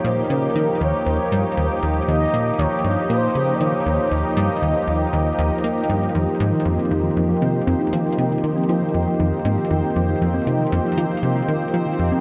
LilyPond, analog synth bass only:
\new Staff \with { instrumentName = "Analog synth bass" } { \clef bass \time 4/4 \key ees \mixolydian \tempo 4 = 118 bes,8 des8 ees16 r16 ees,16 r16 ees,16 r16 g,16 r16 ees,16 r16 ees,8 | ees,8 bes,8 ees,8 g,16 r16 bes,8 des8 ees16 r16 ees,16 r16 | ees,16 r16 g,16 r16 ees,16 r16 ees,8 ees,8 ees,16 r16 bes8 g,8 | f,16 r16 aes,16 r16 f,16 r16 f,8 f,8 c8 f,8 f8 |
c8 ees8 f16 r16 f,16 r16 f,16 r16 aes,16 r16 f,16 r16 f,8 | f,8 c8 f,8 f8 c8 ees8 f16 r16 f,16 r16 | }